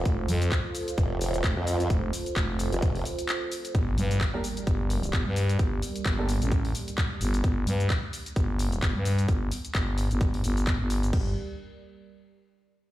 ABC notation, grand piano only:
X:1
M:4/4
L:1/16
Q:"Swing 16ths" 1/4=130
K:Gm
V:1 name="Grand piano"
z16 | z16 | z4 z [B,DGB] z8 z2 | z4 z [B,DGA] z8 z2 |
z16 | z16 | z16 |]